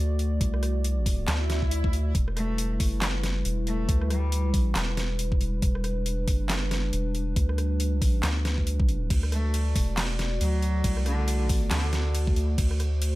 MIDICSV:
0, 0, Header, 1, 6, 480
1, 0, Start_track
1, 0, Key_signature, 1, "minor"
1, 0, Tempo, 434783
1, 450, Time_signature, 4, 2, 24, 8
1, 14522, End_track
2, 0, Start_track
2, 0, Title_t, "Analog synth pad"
2, 0, Program_c, 0, 89
2, 0, Note_on_c, 0, 57, 82
2, 0, Note_on_c, 0, 66, 73
2, 0, Note_on_c, 0, 74, 89
2, 2326, Note_off_c, 0, 66, 0
2, 2327, Note_off_c, 0, 57, 0
2, 2327, Note_off_c, 0, 74, 0
2, 2369, Note_on_c, 0, 64, 77
2, 2369, Note_on_c, 0, 71, 88
2, 2370, Note_on_c, 0, 55, 82
2, 6171, Note_off_c, 0, 64, 0
2, 6208, Note_on_c, 0, 62, 75
2, 10006, Note_off_c, 0, 55, 0
2, 10006, Note_off_c, 0, 71, 0
2, 10011, Note_off_c, 0, 62, 0
2, 10049, Note_on_c, 0, 74, 89
2, 10051, Note_on_c, 0, 57, 81
2, 10051, Note_on_c, 0, 66, 76
2, 13851, Note_off_c, 0, 74, 0
2, 13887, Note_on_c, 0, 72, 90
2, 14522, Note_off_c, 0, 57, 0
2, 14522, Note_off_c, 0, 66, 0
2, 14522, Note_off_c, 0, 72, 0
2, 14522, End_track
3, 0, Start_track
3, 0, Title_t, "Cello"
3, 0, Program_c, 1, 42
3, 2611, Note_on_c, 1, 57, 100
3, 3090, Note_off_c, 1, 57, 0
3, 4051, Note_on_c, 1, 57, 94
3, 4432, Note_off_c, 1, 57, 0
3, 4531, Note_on_c, 1, 55, 96
3, 5011, Note_off_c, 1, 55, 0
3, 10289, Note_on_c, 1, 57, 98
3, 10769, Note_off_c, 1, 57, 0
3, 11489, Note_on_c, 1, 54, 102
3, 12170, Note_off_c, 1, 54, 0
3, 12210, Note_on_c, 1, 50, 94
3, 12591, Note_off_c, 1, 50, 0
3, 12927, Note_on_c, 1, 50, 92
3, 13408, Note_off_c, 1, 50, 0
3, 14522, End_track
4, 0, Start_track
4, 0, Title_t, "Sub bass"
4, 0, Program_c, 2, 38
4, 0, Note_on_c, 2, 38, 93
4, 435, Note_off_c, 2, 38, 0
4, 450, Note_on_c, 2, 36, 97
4, 1394, Note_off_c, 2, 36, 0
4, 1410, Note_on_c, 2, 38, 104
4, 2354, Note_off_c, 2, 38, 0
4, 2371, Note_on_c, 2, 28, 95
4, 3075, Note_off_c, 2, 28, 0
4, 3091, Note_on_c, 2, 30, 99
4, 3795, Note_off_c, 2, 30, 0
4, 3811, Note_on_c, 2, 28, 94
4, 4275, Note_off_c, 2, 28, 0
4, 4291, Note_on_c, 2, 38, 96
4, 5235, Note_off_c, 2, 38, 0
4, 5251, Note_on_c, 2, 28, 100
4, 5955, Note_off_c, 2, 28, 0
4, 5970, Note_on_c, 2, 28, 100
4, 6194, Note_off_c, 2, 28, 0
4, 6209, Note_on_c, 2, 28, 97
4, 6914, Note_off_c, 2, 28, 0
4, 6929, Note_on_c, 2, 30, 99
4, 7634, Note_off_c, 2, 30, 0
4, 7650, Note_on_c, 2, 28, 98
4, 8114, Note_off_c, 2, 28, 0
4, 8129, Note_on_c, 2, 38, 98
4, 9074, Note_off_c, 2, 38, 0
4, 9088, Note_on_c, 2, 38, 106
4, 10033, Note_off_c, 2, 38, 0
4, 10051, Note_on_c, 2, 38, 95
4, 10755, Note_off_c, 2, 38, 0
4, 10770, Note_on_c, 2, 28, 100
4, 11474, Note_off_c, 2, 28, 0
4, 11490, Note_on_c, 2, 38, 94
4, 11954, Note_off_c, 2, 38, 0
4, 11969, Note_on_c, 2, 36, 96
4, 12914, Note_off_c, 2, 36, 0
4, 12929, Note_on_c, 2, 38, 99
4, 13634, Note_off_c, 2, 38, 0
4, 13647, Note_on_c, 2, 38, 97
4, 13873, Note_off_c, 2, 38, 0
4, 13890, Note_on_c, 2, 38, 99
4, 14522, Note_off_c, 2, 38, 0
4, 14522, End_track
5, 0, Start_track
5, 0, Title_t, "Swell"
5, 0, Program_c, 3, 103
5, 1410, Note_on_c, 3, 60, 60
5, 2370, Note_off_c, 3, 60, 0
5, 14522, End_track
6, 0, Start_track
6, 0, Title_t, "Drums"
6, 211, Note_on_c, 9, 42, 53
6, 321, Note_off_c, 9, 42, 0
6, 450, Note_on_c, 9, 36, 118
6, 451, Note_on_c, 9, 42, 86
6, 561, Note_off_c, 9, 36, 0
6, 561, Note_off_c, 9, 42, 0
6, 593, Note_on_c, 9, 37, 53
6, 693, Note_off_c, 9, 37, 0
6, 693, Note_on_c, 9, 37, 52
6, 693, Note_on_c, 9, 42, 57
6, 803, Note_off_c, 9, 37, 0
6, 803, Note_off_c, 9, 42, 0
6, 933, Note_on_c, 9, 42, 89
6, 1043, Note_off_c, 9, 42, 0
6, 1171, Note_on_c, 9, 36, 104
6, 1173, Note_on_c, 9, 46, 98
6, 1281, Note_off_c, 9, 36, 0
6, 1283, Note_off_c, 9, 46, 0
6, 1412, Note_on_c, 9, 38, 117
6, 1412, Note_on_c, 9, 39, 94
6, 1412, Note_on_c, 9, 42, 84
6, 1523, Note_off_c, 9, 38, 0
6, 1523, Note_off_c, 9, 39, 0
6, 1523, Note_off_c, 9, 42, 0
6, 1653, Note_on_c, 9, 38, 63
6, 1653, Note_on_c, 9, 42, 58
6, 1763, Note_off_c, 9, 38, 0
6, 1763, Note_off_c, 9, 42, 0
6, 1792, Note_on_c, 9, 36, 62
6, 1892, Note_on_c, 9, 42, 86
6, 1903, Note_off_c, 9, 36, 0
6, 2002, Note_off_c, 9, 42, 0
6, 2032, Note_on_c, 9, 36, 105
6, 2132, Note_on_c, 9, 42, 57
6, 2143, Note_off_c, 9, 36, 0
6, 2243, Note_off_c, 9, 42, 0
6, 2371, Note_on_c, 9, 36, 122
6, 2373, Note_on_c, 9, 42, 83
6, 2481, Note_off_c, 9, 36, 0
6, 2483, Note_off_c, 9, 42, 0
6, 2514, Note_on_c, 9, 37, 54
6, 2613, Note_off_c, 9, 37, 0
6, 2613, Note_on_c, 9, 37, 50
6, 2613, Note_on_c, 9, 42, 57
6, 2723, Note_off_c, 9, 37, 0
6, 2723, Note_off_c, 9, 42, 0
6, 2852, Note_on_c, 9, 42, 89
6, 2963, Note_off_c, 9, 42, 0
6, 3091, Note_on_c, 9, 36, 105
6, 3092, Note_on_c, 9, 46, 91
6, 3202, Note_off_c, 9, 36, 0
6, 3202, Note_off_c, 9, 46, 0
6, 3331, Note_on_c, 9, 38, 127
6, 3331, Note_on_c, 9, 39, 98
6, 3331, Note_on_c, 9, 42, 84
6, 3442, Note_off_c, 9, 38, 0
6, 3442, Note_off_c, 9, 39, 0
6, 3442, Note_off_c, 9, 42, 0
6, 3571, Note_on_c, 9, 38, 65
6, 3571, Note_on_c, 9, 42, 58
6, 3682, Note_off_c, 9, 38, 0
6, 3682, Note_off_c, 9, 42, 0
6, 3810, Note_on_c, 9, 42, 88
6, 3920, Note_off_c, 9, 42, 0
6, 4051, Note_on_c, 9, 42, 54
6, 4161, Note_off_c, 9, 42, 0
6, 4291, Note_on_c, 9, 36, 127
6, 4291, Note_on_c, 9, 42, 83
6, 4401, Note_off_c, 9, 36, 0
6, 4401, Note_off_c, 9, 42, 0
6, 4432, Note_on_c, 9, 37, 55
6, 4532, Note_off_c, 9, 37, 0
6, 4532, Note_on_c, 9, 37, 53
6, 4532, Note_on_c, 9, 42, 56
6, 4642, Note_off_c, 9, 37, 0
6, 4642, Note_off_c, 9, 42, 0
6, 4771, Note_on_c, 9, 42, 83
6, 4881, Note_off_c, 9, 42, 0
6, 5010, Note_on_c, 9, 36, 108
6, 5010, Note_on_c, 9, 46, 90
6, 5121, Note_off_c, 9, 36, 0
6, 5121, Note_off_c, 9, 46, 0
6, 5249, Note_on_c, 9, 38, 125
6, 5249, Note_on_c, 9, 39, 93
6, 5249, Note_on_c, 9, 42, 83
6, 5360, Note_off_c, 9, 38, 0
6, 5360, Note_off_c, 9, 39, 0
6, 5360, Note_off_c, 9, 42, 0
6, 5490, Note_on_c, 9, 38, 67
6, 5490, Note_on_c, 9, 42, 54
6, 5601, Note_off_c, 9, 38, 0
6, 5601, Note_off_c, 9, 42, 0
6, 5729, Note_on_c, 9, 42, 82
6, 5840, Note_off_c, 9, 42, 0
6, 5871, Note_on_c, 9, 36, 113
6, 5970, Note_on_c, 9, 42, 54
6, 5981, Note_off_c, 9, 36, 0
6, 6080, Note_off_c, 9, 42, 0
6, 6208, Note_on_c, 9, 42, 81
6, 6210, Note_on_c, 9, 36, 127
6, 6319, Note_off_c, 9, 42, 0
6, 6320, Note_off_c, 9, 36, 0
6, 6350, Note_on_c, 9, 37, 58
6, 6447, Note_off_c, 9, 37, 0
6, 6447, Note_on_c, 9, 37, 57
6, 6447, Note_on_c, 9, 42, 52
6, 6558, Note_off_c, 9, 37, 0
6, 6558, Note_off_c, 9, 42, 0
6, 6689, Note_on_c, 9, 42, 79
6, 6800, Note_off_c, 9, 42, 0
6, 6928, Note_on_c, 9, 46, 91
6, 6929, Note_on_c, 9, 36, 113
6, 7039, Note_off_c, 9, 46, 0
6, 7040, Note_off_c, 9, 36, 0
6, 7171, Note_on_c, 9, 38, 126
6, 7171, Note_on_c, 9, 39, 96
6, 7171, Note_on_c, 9, 42, 80
6, 7281, Note_off_c, 9, 38, 0
6, 7281, Note_off_c, 9, 39, 0
6, 7281, Note_off_c, 9, 42, 0
6, 7410, Note_on_c, 9, 38, 68
6, 7410, Note_on_c, 9, 42, 55
6, 7520, Note_off_c, 9, 38, 0
6, 7520, Note_off_c, 9, 42, 0
6, 7650, Note_on_c, 9, 42, 77
6, 7760, Note_off_c, 9, 42, 0
6, 7889, Note_on_c, 9, 42, 50
6, 8000, Note_off_c, 9, 42, 0
6, 8129, Note_on_c, 9, 36, 127
6, 8129, Note_on_c, 9, 42, 77
6, 8239, Note_off_c, 9, 42, 0
6, 8240, Note_off_c, 9, 36, 0
6, 8271, Note_on_c, 9, 37, 59
6, 8370, Note_off_c, 9, 37, 0
6, 8370, Note_on_c, 9, 37, 58
6, 8370, Note_on_c, 9, 42, 52
6, 8480, Note_off_c, 9, 37, 0
6, 8480, Note_off_c, 9, 42, 0
6, 8610, Note_on_c, 9, 42, 80
6, 8720, Note_off_c, 9, 42, 0
6, 8850, Note_on_c, 9, 36, 114
6, 8851, Note_on_c, 9, 46, 91
6, 8960, Note_off_c, 9, 36, 0
6, 8961, Note_off_c, 9, 46, 0
6, 9089, Note_on_c, 9, 38, 127
6, 9089, Note_on_c, 9, 39, 94
6, 9089, Note_on_c, 9, 42, 80
6, 9200, Note_off_c, 9, 38, 0
6, 9200, Note_off_c, 9, 39, 0
6, 9200, Note_off_c, 9, 42, 0
6, 9329, Note_on_c, 9, 38, 67
6, 9329, Note_on_c, 9, 42, 51
6, 9440, Note_off_c, 9, 38, 0
6, 9440, Note_off_c, 9, 42, 0
6, 9471, Note_on_c, 9, 36, 66
6, 9569, Note_on_c, 9, 42, 76
6, 9581, Note_off_c, 9, 36, 0
6, 9680, Note_off_c, 9, 42, 0
6, 9711, Note_on_c, 9, 36, 113
6, 9810, Note_on_c, 9, 42, 49
6, 9822, Note_off_c, 9, 36, 0
6, 9920, Note_off_c, 9, 42, 0
6, 10050, Note_on_c, 9, 36, 127
6, 10051, Note_on_c, 9, 42, 77
6, 10051, Note_on_c, 9, 49, 70
6, 10161, Note_off_c, 9, 36, 0
6, 10161, Note_off_c, 9, 42, 0
6, 10161, Note_off_c, 9, 49, 0
6, 10193, Note_on_c, 9, 37, 58
6, 10291, Note_off_c, 9, 37, 0
6, 10291, Note_on_c, 9, 37, 59
6, 10291, Note_on_c, 9, 42, 52
6, 10402, Note_off_c, 9, 37, 0
6, 10402, Note_off_c, 9, 42, 0
6, 10531, Note_on_c, 9, 42, 77
6, 10531, Note_on_c, 9, 49, 52
6, 10641, Note_off_c, 9, 42, 0
6, 10641, Note_off_c, 9, 49, 0
6, 10770, Note_on_c, 9, 36, 108
6, 10771, Note_on_c, 9, 46, 98
6, 10881, Note_off_c, 9, 36, 0
6, 10881, Note_off_c, 9, 46, 0
6, 11012, Note_on_c, 9, 38, 120
6, 11012, Note_on_c, 9, 39, 86
6, 11012, Note_on_c, 9, 42, 80
6, 11012, Note_on_c, 9, 49, 70
6, 11122, Note_off_c, 9, 38, 0
6, 11122, Note_off_c, 9, 39, 0
6, 11122, Note_off_c, 9, 42, 0
6, 11122, Note_off_c, 9, 49, 0
6, 11251, Note_on_c, 9, 38, 64
6, 11251, Note_on_c, 9, 42, 53
6, 11361, Note_off_c, 9, 38, 0
6, 11361, Note_off_c, 9, 42, 0
6, 11491, Note_on_c, 9, 42, 79
6, 11491, Note_on_c, 9, 49, 51
6, 11601, Note_off_c, 9, 42, 0
6, 11601, Note_off_c, 9, 49, 0
6, 11729, Note_on_c, 9, 42, 51
6, 11840, Note_off_c, 9, 42, 0
6, 11969, Note_on_c, 9, 42, 83
6, 11969, Note_on_c, 9, 49, 68
6, 11970, Note_on_c, 9, 36, 117
6, 12079, Note_off_c, 9, 42, 0
6, 12079, Note_off_c, 9, 49, 0
6, 12080, Note_off_c, 9, 36, 0
6, 12110, Note_on_c, 9, 37, 55
6, 12209, Note_off_c, 9, 37, 0
6, 12209, Note_on_c, 9, 37, 54
6, 12209, Note_on_c, 9, 42, 54
6, 12320, Note_off_c, 9, 37, 0
6, 12320, Note_off_c, 9, 42, 0
6, 12450, Note_on_c, 9, 42, 81
6, 12450, Note_on_c, 9, 49, 51
6, 12560, Note_off_c, 9, 42, 0
6, 12560, Note_off_c, 9, 49, 0
6, 12689, Note_on_c, 9, 36, 109
6, 12689, Note_on_c, 9, 46, 97
6, 12800, Note_off_c, 9, 36, 0
6, 12800, Note_off_c, 9, 46, 0
6, 12928, Note_on_c, 9, 38, 119
6, 12928, Note_on_c, 9, 39, 89
6, 12928, Note_on_c, 9, 42, 83
6, 12928, Note_on_c, 9, 49, 71
6, 13039, Note_off_c, 9, 38, 0
6, 13039, Note_off_c, 9, 39, 0
6, 13039, Note_off_c, 9, 42, 0
6, 13039, Note_off_c, 9, 49, 0
6, 13168, Note_on_c, 9, 38, 63
6, 13168, Note_on_c, 9, 42, 56
6, 13279, Note_off_c, 9, 38, 0
6, 13279, Note_off_c, 9, 42, 0
6, 13409, Note_on_c, 9, 42, 81
6, 13409, Note_on_c, 9, 49, 50
6, 13519, Note_off_c, 9, 42, 0
6, 13519, Note_off_c, 9, 49, 0
6, 13551, Note_on_c, 9, 36, 104
6, 13649, Note_on_c, 9, 42, 52
6, 13661, Note_off_c, 9, 36, 0
6, 13760, Note_off_c, 9, 42, 0
6, 13889, Note_on_c, 9, 42, 80
6, 13889, Note_on_c, 9, 49, 70
6, 13890, Note_on_c, 9, 36, 119
6, 13999, Note_off_c, 9, 42, 0
6, 13999, Note_off_c, 9, 49, 0
6, 14000, Note_off_c, 9, 36, 0
6, 14030, Note_on_c, 9, 37, 54
6, 14130, Note_off_c, 9, 37, 0
6, 14130, Note_on_c, 9, 37, 51
6, 14130, Note_on_c, 9, 42, 57
6, 14240, Note_off_c, 9, 37, 0
6, 14240, Note_off_c, 9, 42, 0
6, 14370, Note_on_c, 9, 42, 84
6, 14370, Note_on_c, 9, 49, 51
6, 14480, Note_off_c, 9, 42, 0
6, 14480, Note_off_c, 9, 49, 0
6, 14522, End_track
0, 0, End_of_file